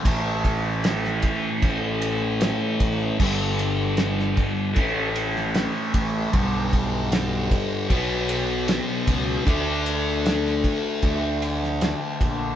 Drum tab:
CC |----------------|x---------------|----------------|----------------|
RD |x-x-x-x-x-x-x-x-|--x-x-x-x-x-x-x-|x-x-x-x-x-x-x-x-|x-x-x-x-x-x-x-x-|
SD |----oo------o---|----oo-----oo---|----o-------o---|----oo-----oo---|
BD |o-o---o-o-----o-|o-----o-o-----o-|o-o---o-o-----o-|o-----o-o-----o-|